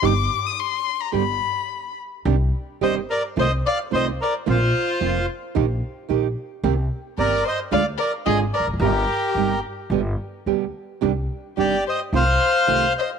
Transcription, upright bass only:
\new Staff \with { instrumentName = "Upright bass" } { \clef bass \time 4/4 \key c \minor \tempo 4 = 109 g,,16. r4. r32 g,,16. r4. r32 | c,16. r8 r32 g,,16. r8 r32 c,16. r8 r32 c,16. r8 r32 | bes,,16. r8 r32 f,,16. r8 r32 bes,,16. r8 r32 bes,,16. r8 r32 | c,16. r8 r32 g,,16. r8 r32 d,16. r8 r32 aes,,16. r16 e,,32 f,,32 fis,,32 |
g,,16. r8 r32 g,,16. r8 r32 g,,16. r8 r32 d,16. r8 r32 | c,16. r8 r32 g,,16. r8 r32 c,16. r8 r32 c,16. r8 r32 | }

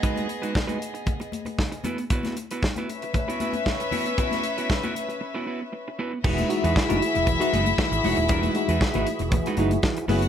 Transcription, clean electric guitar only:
\new Staff \with { instrumentName = "Clean electric guitar" } { \time 4/4 \key e \lydian \tempo 4 = 116 <gis dis' fis' b'>8 r16 <gis dis' fis' b'>16 r16 <gis dis' fis' b'>16 r2 <b e' fis' b'>16 r16 | <b e' fis' b'>8 r16 <b e' fis' b'>16 r16 <b e' fis' b'>16 r8. <b e' fis' b'>16 <b e' fis' b'>16 r8. <b e' fis' cis''>16 r16 | <b e' fis' b'>8 r16 <b e' fis' b'>16 r16 <b e' fis' b'>16 r8. <b e' fis' b'>16 <b e' fis' b'>16 r8. <b e' fis' b'>16 r16 | <gis dis' fis' b'>8 r16 <gis dis' fis' b'>16 r16 <gis dis' fis' b'>8 r8 <gis dis' fis' b'>16 <gis dis' fis' b'>16 r8. <gis dis' fis' cis''>16 r16 |
<gis dis' fis' b'>8 r16 <gis dis' fis' b'>16 r16 <gis dis' fis' b'>16 r8. <gis dis' fis' b'>16 <gis dis' fis' b'>16 r8. <b e' fis' b'>16 r16 | }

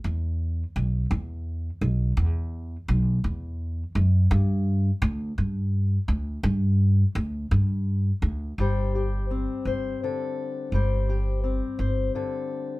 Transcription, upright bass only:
\new Staff \with { instrumentName = "Upright bass" } { \clef bass \time 6/8 \key g \mixolydian \tempo 4. = 56 e,4 b,,8 e,4 b,,8 | e,4 b,,8 e,4 fis,8 | g,4 d,8 g,4 d,8 | g,4 d,8 g,4 d,8 |
g,,4. g,,8 r4 | g,,4. g,,8 r4 | }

